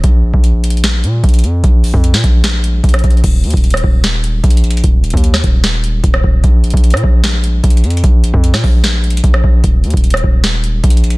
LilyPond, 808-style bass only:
\new Staff \with { instrumentName = "808-style bass" } { \clef bass \time 4/4 \key bes \phrygian \tempo 4 = 150 bes,,8. bes,,4.~ bes,,16 bes,8 bes,,8 f,8 | bes,,8. f,8 bes,16 bes,,4. bes,,8 bes,,8 | ees,,8 ees,16 ees,,8. ees,,4. bes,,4 | ees,,8. ees,8. ees,,4. ees,,8 ees,,8 |
bes,,8. bes,,8 bes,16 bes,,4. bes,,8 f,8 | bes,,8. f,8 bes,16 bes,,4. bes,,8 bes,,8 | ees,,8 ees,16 ees,,8. ees,,4. bes,,4 | }